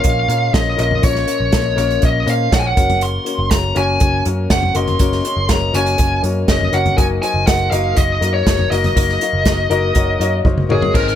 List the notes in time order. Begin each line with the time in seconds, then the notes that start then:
Already playing: A#2 F3 A#3 C#4 F4 A#4 C#5 D#5 F5
0.03 A#1 A#3 C#4 F4 A#4 D#5, kick, closed hi-hat
0.28 A#2 A#3 C#4 F4 A#4 C#5, closed hi-hat
0.52 A#1 A#3 C#4 F4 A#4 C#5 D#5, kick, snare, closed hi-hat
0.76 A#1 A#3 C#4 F4 A#4 D#5, closed hi-hat
0.91 floor tom
1.02 A#1 A#2 F3 A#3 C#4 F4 A#4 C#5, kick, closed hi-hat
1.16 snare
1.27 A#3 C#4 F4 A#4 C#5, closed hi-hat
1.40 A#1
1.52 A#1 A#3 C#4 F4 A#4 C#5, kick, snare, closed hi-hat
1.76 A#1 A#3 C#4 F4 A#4 C#5, closed hi-hat
1.90 closed hi-hat
2.01 A#1 A#3 C#4 F4 A#4 D#5, kick, closed hi-hat
2.05 D#5
2.25 A#2 A#3 C#4 F4 A#4 C5, closed hi-hat
2.30 F5
2.50 A#1 A#3 C#4 F4 A#4 C#5, kick, snare, closed hi-hat
2.55 F#5
2.60 G#5
2.67 F#5
2.76 F#1 C#3 A#3 C#4 F#4 A#4 C#5, kick, closed hi-hat
2.90 closed hi-hat, floor tom
3.01 C6, closed hi-hat
3.25 A#3 C#4 F#4 A#4 C#5, closed hi-hat
3.39 F#1
3.50 F#1 A#3 C#4 F#4 A#4 C#5 A#5, kick, snare, closed hi-hat
3.75 F#1 A#3 C#4 F#4 A#4 C#5 G#5, closed hi-hat
4.00 F#1 A#3 C#4 F#4 A#4 C#5, kick, closed hi-hat
4.25 F#2 A#3 C#4 F#4 A#4 C#5, closed hi-hat
4.50 F#1 A#3 C#4 F#4 A#4 C5 F#5, kick, snare, closed hi-hat
4.63 floor tom
4.74 F#1 C#3 A#3 C#4 F#4 A#4 D#5 C6, closed hi-hat
4.87 closed hi-hat, floor tom
4.99 F#1 A#3 C#4 F#4 A#4 C#5, kick, closed hi-hat
5.12 snare
5.24 A#3 C#4 F#4 A#4 C#5, closed hi-hat
5.37 F#1
5.48 F#1 A#3 C#4 F#4 A#4 C#5 A#5, kick, snare, closed hi-hat
5.73 F#1 A#3 C#4 F#4 A#4 C#5 G#5, closed hi-hat
5.86 closed hi-hat
5.97 F#1 A#3 C#4 F#4 A#4 C#5, kick, closed hi-hat
6.23 F#2 A#3 C#4 F#4 A#4 C#5, closed hi-hat
6.48 F#1 A#3 C#4 F#4 A#4 C#5 D#5, kick, snare, closed hi-hat
6.61 floor tom
6.72 F#1 A#3 C#4 F#4 A#4 C#5 F#5, closed hi-hat
6.86 closed hi-hat, floor tom
6.97 F#1 F#3 A#3 D#4 F#4 A#4 D#5 G#5, kick, closed hi-hat
7.22 A#3 D#4 F#4 A#4 C5 G#5, closed hi-hat
7.34 F#1
7.47 F#1 A#3 D#4 F#4 A#4 D#5 F#5, kick, snare, closed hi-hat
7.71 F#1 A#3 D#4 F#4 A#4 D#5 F5, closed hi-hat
7.95 F#1 A#3 D#4 F#4 A#4 D#5, kick, closed hi-hat
8.21 F#2 A#3 D#4 F#4 A#4 D#5, closed hi-hat
8.34 C#5
8.45 F#1 A#3 D#4 F#4 A#4 D#5, kick, snare, closed hi-hat
8.59 floor tom
8.71 F#1 A#3 D#4 F#4 A#4 D#5, closed hi-hat
8.84 closed hi-hat, floor tom
8.96 F#1 F#3 A#3 D#4 F#4 A#4 D#5, kick, closed hi-hat
9.09 snare
9.21 A#3 D#4 F#4 A#4 F5, closed hi-hat
9.33 F#1
9.45 F#1 A#3 D#4 F#4 A#4 D#5, kick, snare, closed hi-hat
9.70 F#1 A#3 D#4 F#4 A#4 D#5 A#5, closed hi-hat
9.94 F#1 A#3 D#4 F#4 A#4 C#5 F#5, kick, closed hi-hat
10.20 F#2 A#3 D#4 F#4 A#4 C#5 F5, closed hi-hat
10.45 F#1 A#3 D#4 F#4 A#4 C5 D#5, kick, high tom
10.58 mid tom
10.69 F#1 A#3 D#4 F#4 G#4 A#4 C#5, mid tom
10.82 floor tom
10.94 G#1 G#2 D#3 C4 D#4 G#4 A#4 C5, kick, crash
11.07 snare